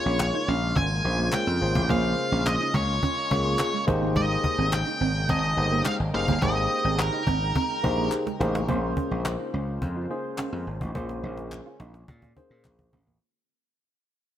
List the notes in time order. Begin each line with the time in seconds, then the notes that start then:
Already playing: C#3 G#3 A#3 C#4 F4 G#4 C#5
0.05 A#1 C#4
0.19 cajon slap, clap
0.34 D#4
0.48 A#1 C#4 F5
0.62 cajon slap
0.76 G#1 C#4 G#5, cajon bass
1.04 A#1 A#3 C#4 F4 G#4 C5
1.19 A#3
1.32 G#3 G5, cajon slap, clap
1.47 F2, cajon slap
1.61 G#1 A#3 C#4 F4 G#4 C5, muted clean electric guitar stroke, cajon slap
1.75 A1 A#3, cajon bass
1.89 A#1 A#3 C#4 F4 G#4 C5 F5, cajon bass
2.18 muted clean electric guitar stroke, cajon slap
2.32 A#1 C#4, cajon slap
2.46 D#5, muted clean electric guitar stroke, cajon slap, clap
2.60 D#4
2.74 C#2 C#4 C#5, cajon bass
2.88 cajon slap
3.03 C#4, cajon bass
3.31 C#2 A#3 C#4 F4 G#4 C#5, muted clean electric guitar stroke, cajon bass
3.45 A#3
3.59 cajon slap, clap
3.73 G#3, cajon slap
3.87 G#1 A#3 D#4 G4 G#4 C5 G5, muted clean electric guitar stroke, cajon bass
4.02 A#3, cajon slap
4.16 G#3 D#5, cajon bass
4.44 muted clean electric guitar stroke, cajon bass
4.58 G#1 C4
4.72 G5, cajon slap, clap
4.87 D#4
5.01 G#1 C4
5.15 cajon slap
5.29 G#1 C4 D#5, cajon bass
5.57 G1 A#3 D#4 G4 G#4 C5, muted clean electric guitar stroke, cajon slap
5.72 A#3
5.85 G#3 F5, cajon slap, clap
6.00 G#1
6.13 F#1 A#3 D#4 G4 G#4 C5 F5, muted clean electric guitar stroke
6.28 G1 A#3, cajon bass
6.42 G#1 G#3 A#3 D#4 G4 G#4 C5 D#5, cajon bass
6.71 muted clean electric guitar stroke, cajon slap
6.84 G#1 C4, cajon slap
6.99 A#4, muted clean electric guitar stroke, cajon slap, clap
7.13 D#4, cajon slap
7.27 G#1 C4, cajon bass
7.55 C4, cajon bass
7.70 cajon slap
7.83 A#1 A#3 D#4 G4 G#4 C5, muted clean electric guitar stroke, cajon bass
7.98 A#3, cajon slap
8.12 cajon slap, clap
8.26 G#3, cajon slap
8.40 A1 A#3 D#4 G4 G#4 C5, muted clean electric guitar stroke, cajon slap
8.55 A#3, cajon slap
8.68 A#1 C#3 G#3 A#3 C4 F4 G#4 C5, cajon bass
8.75 C#4
8.97 C#4, cajon bass
9.11 A#1, cajon slap
9.25 muted clean electric guitar stroke, cajon slap, clap
9.40 D#4
9.54 C#2 C#4
9.67 cajon slap
9.82 F2, muted clean electric guitar stroke, cajon bass
9.96 F4
10.10 A#3 C#4 D#4 G#4 C5, cajon slap
10.25 cajon slap
10.38 C#4, cajon slap, clap
10.53 F2, muted clean electric guitar stroke, cajon slap
10.67 G#1, cajon slap
10.81 A1 D#4, cajon bass
10.95 A#1 A#3 C#4 F4 G#4 C5, cajon bass, cajon slap
11.09 muted clean electric guitar stroke, cajon slap
11.23 A#1 D#4, cajon slap
11.37 cajon slap
11.52 muted clean electric guitar stroke, cajon slap, clap
11.66 F4
11.80 A#1 D#4, cajon slap
11.94 cajon slap
12.08 A#2, muted clean electric guitar stroke, cajon bass
12.22 F4, cajon bass
12.36 A#3 C#4 D#4 G#4 C5, cajon bass
12.50 A#2
12.64 A#1, muted clean electric guitar stroke, cajon bass, clap
12.79 cajon bass
12.93 A1 C#4, cajon bass
13.07 A#3, cajon bass